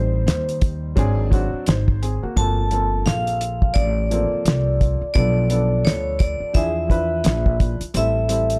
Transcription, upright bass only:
0.00 0.24 A1 loud
0.27 0.93 D#2 medium
0.97 1.50 G#1 loud
1.53 muted upright bass stroke soft
1.68 2.20 G#1 medium
2.23 muted upright bass stroke soft
2.36 3.03 G1 loud
3.06 3.73 A#1 loud
3.76 4.29 A1 medium
4.32 muted upright bass stroke soft
4.45 4.98 C2 medium
5.01 muted upright bass stroke medium
5.15 5.82 B1 loud
5.85 6.38 D2 medium
6.40 muted upright bass stroke soft
6.55 7.22 E2 medium
7.25 7.78 A#1 loud
7.81 muted upright bass stroke soft
7.95 8.59 A1 loud

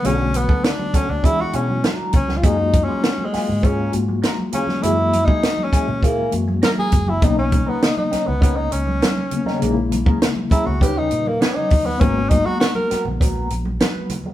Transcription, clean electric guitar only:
0.04 0.25 D4 medium
0.04 0.19 F#4 medium
0.04 0.18 A4 medium
0.20 muted clean electric guitar stroke soft
0.34 muted clean electric guitar stroke soft
0.49 0.62 D4 soft
0.49 0.61 F#4 soft
0.49 0.61 A4 medium
0.79 muted clean electric guitar stroke soft
0.94 1.09 D4 medium
0.94 1.08 F#4 medium
0.94 1.08 A4 medium
1.09 muted clean electric guitar stroke soft
1.23 1.39 D4 medium
1.23 1.38 F#4 medium
1.23 1.37 G#4 medium
1.39 muted clean electric guitar stroke soft
1.53 1.65 D4 medium
1.53 1.66 F#4 medium
1.53 1.66 G#4 medium
1.68 muted clean electric guitar stroke soft
1.83 1.95 C#4 medium
1.83 1.96 F4 medium
1.83 1.95 A4 medium
1.95 2.11 D4 medium
1.95 2.12 F#4 medium
1.95 2.12 A#4 medium
2.13 muted clean electric guitar stroke soft
2.28 muted clean electric guitar stroke soft
2.43 2.58 A#3 medium
2.43 2.58 F4 medium
2.43 2.57 G#4 medium
2.58 muted clean electric guitar stroke soft
2.73 muted clean electric guitar stroke soft
2.88 3.01 A#3 medium
2.88 3.00 F4 medium
2.88 3.00 G#4 medium
3.18 muted clean electric guitar stroke soft
3.33 3.48 A#3 medium
3.33 3.48 F4 medium
3.33 3.47 G#4 medium
3.48 muted clean electric guitar stroke soft
3.62 3.91 A#3 medium
3.62 3.91 F4 medium
3.62 3.91 G#4 medium
3.93 muted clean electric guitar stroke soft
4.08 muted clean electric guitar stroke soft
4.22 4.38 A#3 medium
4.22 4.38 F4 medium
4.22 4.38 A#4 medium
4.38 muted clean electric guitar stroke soft
4.52 4.65 A#3 medium
4.52 4.65 F4 medium
4.52 4.65 G#4 medium
4.68 muted clean electric guitar stroke soft
4.83 4.98 A#3 medium
4.83 4.97 E4 medium
4.83 4.97 G#4 medium
4.98 muted clean electric guitar stroke soft
5.13 muted clean electric guitar stroke soft
5.28 5.40 A#3 soft
5.28 5.40 E4 medium
5.28 5.40 G#4 soft
5.58 muted clean electric guitar stroke soft
5.72 5.87 A#3 medium
5.72 5.87 E4 medium
5.72 5.86 G#4 medium
5.88 muted clean electric guitar stroke soft
6.03 6.30 A#3 medium
6.03 6.31 E4 medium
6.03 6.31 G#4 medium
6.33 muted clean electric guitar stroke soft
6.48 muted clean electric guitar stroke soft
6.62 6.90 A#3 medium
6.62 6.90 E4 medium
6.62 6.90 A#4 medium
6.92 muted clean electric guitar stroke soft
7.08 muted clean electric guitar stroke soft
7.22 7.37 C#4 medium
7.22 7.37 D#4 medium
7.22 7.36 A#4 medium
7.37 muted clean electric guitar stroke medium
7.52 muted clean electric guitar stroke soft
7.66 7.79 C#4 soft
7.66 7.79 D#4 soft
7.66 7.79 A#4 medium
7.97 muted clean electric guitar stroke soft
8.11 8.27 C#4 medium
8.11 8.27 D#4 medium
8.11 8.25 A#4 medium
8.27 muted clean electric guitar stroke soft
8.41 8.69 C#4 medium
8.41 8.69 D#4 medium
8.41 8.70 A#4 medium
8.71 muted clean electric guitar stroke soft
8.86 muted clean electric guitar stroke soft
9.01 muted clean electric guitar stroke soft
9.17 muted clean electric guitar stroke soft
9.46 9.60 C#4 soft
9.46 9.61 D#4 soft
9.46 9.61 A#4 medium
9.61 9.76 C#4 medium
9.61 9.76 G#4 medium
9.61 9.75 A#4 medium
9.76 muted clean electric guitar stroke soft
9.91 muted clean electric guitar stroke soft
10.06 10.19 C#4 soft
10.06 10.18 G#4 soft
10.06 10.18 A#4 medium
10.36 muted clean electric guitar stroke soft
10.51 10.66 C#4 medium
10.51 10.66 G#4 medium
10.51 10.65 A#4 medium
10.67 muted clean electric guitar stroke soft
10.81 11.09 C#4 medium
10.81 11.09 G4 medium
10.81 11.10 B4 medium
11.11 muted clean electric guitar stroke soft
11.26 muted clean electric guitar stroke soft
11.41 11.69 C#4 medium
11.41 11.69 G4 medium
11.41 11.69 C#5 medium
11.72 muted clean electric guitar stroke soft
11.86 muted clean electric guitar stroke soft
12.01 12.16 B3 medium
12.01 12.15 F#4 medium
12.01 12.14 A#4 medium
12.16 muted clean electric guitar stroke soft
12.30 muted clean electric guitar stroke soft
12.46 12.58 B3 soft
12.46 12.58 F#4 medium
12.46 12.57 A#4 medium
12.76 muted clean electric guitar stroke soft
12.90 13.05 B3 medium
12.90 13.05 F#4 medium
12.90 13.04 A#4 medium
13.05 muted clean electric guitar stroke soft
13.21 13.48 B3 medium
13.21 13.49 F#4 medium
13.21 13.49 A#4 medium
13.50 muted clean electric guitar stroke soft
13.66 muted clean electric guitar stroke soft
13.80 14.08 B3 medium
13.80 14.08 F#4 medium
13.80 14.09 B4 medium
14.11 muted clean electric guitar stroke soft
14.26 muted clean electric guitar stroke soft

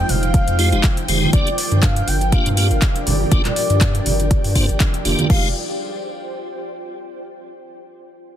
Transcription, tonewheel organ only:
0.59 0.69 G#3 medium
0.59 0.69 D#4 medium
0.59 0.69 F4 medium
0.59 0.69 G4 loud
0.72 0.87 G#3 loud
0.72 0.87 D#4 medium
0.72 0.87 F4 loud
0.72 0.87 G4 loud
1.08 1.31 G#3 medium
1.08 1.31 D#4 medium
1.08 1.31 F4 medium
1.08 1.31 G4 medium
1.33 1.50 A#3 medium
1.33 1.50 D4 medium
1.33 1.50 F4 medium
1.33 1.50 G4 medium
2.32 2.49 A#3 loud
2.32 2.49 D4 medium
2.32 2.49 F4 medium
2.32 2.49 G4 loud
2.57 2.68 A#3 medium
2.57 2.68 D4 medium
2.57 2.68 F4 medium
2.57 2.68 G4 medium
3.32 3.42 A#3 loud
3.32 3.42 D4 medium
3.32 3.42 F4 medium
3.32 3.42 G4 loud
4.56 4.66 A#3 medium
4.56 4.66 D4 medium
4.56 4.66 F4 medium
4.56 4.66 C5 loud
5.05 5.27 A#3 loud
5.05 5.27 D4 medium
5.05 5.27 F4 medium
5.05 5.27 G4 loud
5.30 5.49 G#3 medium
5.30 5.49 D#4 medium
5.30 5.49 F4 medium
5.30 5.49 G4 medium

